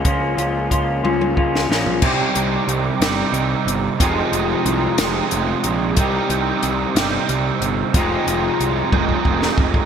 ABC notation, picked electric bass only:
X:1
M:6/8
L:1/8
Q:3/8=61
K:Cphr
V:1 name="Picked electric bass" clef=bass
D,, D,, D,, D,, D,, B,,, | C,, C,, C,, G,,, C,, G,,, | F,,, F,,, C,, F,,, F,,, B,,, | C,, C,, C,, G,,, C,, G,,, |
F,,, F,,, C,, F,,, F,,, F,,, |]